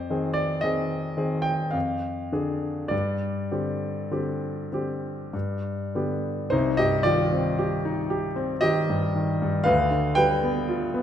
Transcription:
0.00 1.73 F2 medium
0.00 0.36 C5 medium
0.10 0.60 D#3 soft
0.10 0.60 C4 soft
0.10 0.60 G#4 soft
0.34 0.62 D5 medium
0.61 1.14 D#3 soft
0.61 1.14 C4 soft
0.61 1.14 G#4 soft
0.61 1.44 D#5 medium
1.17 1.70 D#3 soft
1.17 1.70 C4 soft
1.17 1.70 G#4 medium
1.42 1.73 G5 medium
1.71 2.30 F2 medium
1.71 2.90 F5 medium
2.32 2.87 D3 soft
2.32 2.88 D4 soft
2.32 2.88 G#4 soft
2.88 3.49 G2 medium
2.88 5.32 D5 medium
3.51 4.08 D3 soft
3.51 4.08 C4 soft
3.51 4.09 G4 soft
4.11 4.69 D3 soft
4.11 4.69 C4 soft
4.11 4.69 G4 soft
4.72 5.29 D3 soft
4.72 5.29 C4 soft
4.72 5.30 G4 soft
5.33 5.93 G2 medium
5.95 6.49 D3 soft
5.95 6.49 B3 soft
5.95 6.49 G4 soft
6.50 9.64 C2 medium
6.50 6.77 D#4 medium
6.50 6.78 C5 medium
6.77 7.22 G2 soft
6.77 7.04 G4 medium
6.77 7.05 D#5 medium
7.03 7.48 D#3 medium
7.03 8.58 F4 medium
7.03 8.62 D5 medium
7.32 7.74 C4 medium
7.59 8.00 G4 medium
7.85 8.27 D#4 medium
8.10 8.52 G4 medium
8.36 8.79 C4 medium
8.61 9.06 D#3 medium
8.61 9.63 G4 medium
8.61 9.66 D#5 loud
8.90 9.32 G2 medium
9.15 9.57 D#3 medium
9.42 9.68 G2 medium
9.64 11.03 D2 medium
9.64 10.13 B4 medium
9.64 10.17 F5 loud
9.91 10.33 D3 medium
10.15 10.58 G3 medium
10.15 11.03 B4 medium
10.15 11.03 G5 loud
10.43 10.83 B3 medium
10.68 11.03 F4 medium
10.94 11.03 B3 medium

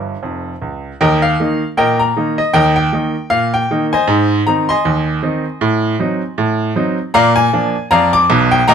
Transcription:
0.00 0.13 G1 medium
0.00 0.14 G2 soft
0.00 0.20 G#5 medium
0.23 0.52 F1 soft
0.23 0.52 F2 medium
0.62 0.91 C#2 medium
1.01 1.34 D#2 medium
1.01 1.22 A#4 medium
1.01 1.22 D#5 medium
1.01 1.23 G5 loud
1.22 1.66 F5 loud
1.40 1.61 D#3 medium
1.40 1.61 A#3 soft
1.40 1.61 D#4 medium
1.77 2.10 A#2 medium
1.77 1.99 A#4 medium
1.77 1.99 D#5 medium
1.77 2.00 G5 loud
1.99 2.36 A#5 medium
2.16 2.37 D#3 medium
2.16 2.38 A#3 medium
2.16 2.38 D#4 medium
2.38 2.53 D#5 medium
2.53 2.87 D#2 loud
2.53 2.75 A#4 medium
2.53 2.75 D#5 medium
2.53 2.74 G5 loud
2.76 3.28 G5 loud
2.93 3.14 D#3 medium
2.93 3.14 A#3 soft
2.93 3.14 D#4 medium
3.30 3.64 A#2 medium
3.30 3.53 F5 loud
3.54 3.84 G5 loud
3.71 3.91 D#3 soft
3.71 3.92 A#3 medium
3.71 3.92 D#4 medium
3.93 4.43 C5 medium
3.93 4.43 D#5 medium
3.93 4.36 G#5 loud
4.08 4.40 G#2 loud
4.47 4.68 D#3 medium
4.47 4.68 C4 medium
4.47 4.68 D#4 medium
4.47 4.69 A#5 medium
4.69 6.73 D#5 medium
4.69 6.73 G#5 medium
4.69 6.72 C6 loud
4.85 5.18 D#2 medium
5.23 5.44 D#3 medium
5.23 5.44 C4 medium
5.23 5.44 D#4 medium
5.61 5.94 A2 loud
5.99 6.21 F#3 medium
5.99 6.21 C4 soft
5.99 6.21 D#4 medium
6.38 6.71 A2 medium
6.76 6.97 F#3 medium
6.76 6.97 C4 medium
6.76 6.98 D#4 medium
7.14 7.47 A#2 loud
7.14 7.36 D5 loud
7.14 7.36 F5 loud
7.14 7.37 A#5 loud
7.36 7.88 G#5 loud
7.53 7.74 F3 medium
7.53 7.74 A#3 medium
7.53 7.75 D4 medium
7.91 8.24 F2 loud
7.91 8.12 D5 medium
7.91 8.13 F5 loud
7.91 8.14 A#5 loud
8.13 8.44 D6 loud
8.30 8.60 B1 loud
8.30 8.61 B2 loud
8.51 8.67 G5 loud
8.68 8.74 A#2 loud
8.68 8.74 D#5 loud
8.68 8.74 G5 loud
8.68 8.74 A#5 loud

